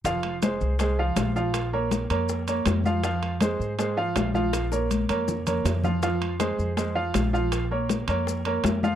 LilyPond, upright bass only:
\new Staff \with { instrumentName = "Upright bass" } { \clef bass \time 4/4 \key f \minor \tempo 4 = 161 f,,4. c,4. bes,,4~ | bes,,4. f,4. f,4~ | f,4. aes,4. bes,,4~ | bes,,4. f,4. f,4~ |
f,4. f,4. bes,,4~ | bes,,4. f,4. f,4 | }